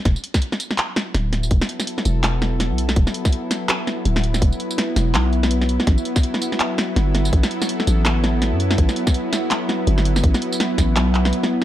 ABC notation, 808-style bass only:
X:1
M:4/4
L:1/16
Q:"Swing 16ths" 1/4=165
K:Ador
V:1 name="808-style bass" clef=bass
E,,, z8 z3 D,,,4 | E,,, z4 z E,,,6- E,,, B,,,3 | E,,, z8 z3 D,,,4 | E,,, z4 z E,,,2 B,,,6- B,,, z |
A,,, z8 z3 G,,,4 | A,,, z4 z A,,,6- A,,, F,,3 | A,,, z8 z3 G,,,4 | A,,, z4 z A,,,2 B,,,4 z4 |]